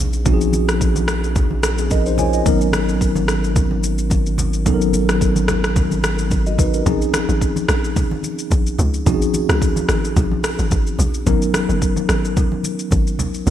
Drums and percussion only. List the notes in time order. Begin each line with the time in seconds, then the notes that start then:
0.13 shaker
0.26 kick, low conga, shaker
0.41 shaker
0.53 high conga, shaker
0.69 cross-stick, shaker
0.81 kick, shaker
0.95 high conga, shaker
1.08 cross-stick, shaker
1.24 shaker
1.36 kick, low conga, shaker
1.51 high conga
1.62 cross-stick, high conga, shaker
1.78 shaker
1.90 kick, high conga, shaker
2.06 shaker
2.18 low conga, shaker
2.33 shaker
2.46 kick, low conga, shaker
2.61 shaker
2.73 cross-stick, high conga, shaker
2.89 shaker
3.01 kick, shaker
3.15 high conga, shaker
3.28 cross-stick, shaker
3.44 shaker
3.56 kick, low conga, shaker
3.71 high conga
3.83 high conga, shaker
3.98 shaker
4.10 kick, high conga, shaker
4.26 shaker
4.38 low conga, shaker
4.53 shaker
4.66 kick, low conga, shaker
4.81 shaker
4.93 high conga, shaker
5.09 cross-stick, shaker
5.21 kick, shaker
5.36 high conga, shaker
5.48 cross-stick, low conga, shaker
5.64 cross-stick, shaker
5.76 kick, low conga, shaker
5.91 high conga, shaker
6.03 cross-stick, high conga, shaker
6.19 shaker
6.30 kick, high conga, shaker
6.46 shaker
6.58 kick, low conga, shaker
6.74 shaker
6.86 kick, low conga, shaker
7.02 shaker
7.13 cross-stick, high conga, shaker
7.29 shaker
7.41 kick, shaker
7.56 high conga, shaker
7.69 cross-stick, shaker
7.84 shaker
7.96 kick, low conga, shaker
8.11 high conga
8.23 high conga, shaker
8.39 shaker
8.51 kick, high conga, shaker
8.67 shaker
8.78 low conga, shaker
8.94 shaker
9.06 kick, low conga, shaker
9.22 shaker
9.33 high conga, shaker
9.49 cross-stick, shaker
9.62 kick, shaker
9.76 high conga, shaker
9.89 cross-stick, shaker
10.05 shaker
10.16 kick, low conga, shaker
10.31 high conga
10.43 cross-stick, high conga, shaker
10.59 shaker
10.71 kick, high conga, shaker
10.87 shaker
10.99 low conga, shaker
11.14 shaker
11.27 kick, low conga, shaker
11.42 shaker
11.54 cross-stick, high conga, shaker
11.70 shaker
11.82 kick, shaker
11.96 high conga, shaker
12.09 cross-stick, shaker
12.25 shaker
12.37 kick, low conga, shaker
12.52 high conga
12.63 high conga, shaker
12.79 shaker
12.91 kick, high conga, shaker
13.07 shaker
13.19 low conga, shaker
13.34 shaker
13.47 low conga, shaker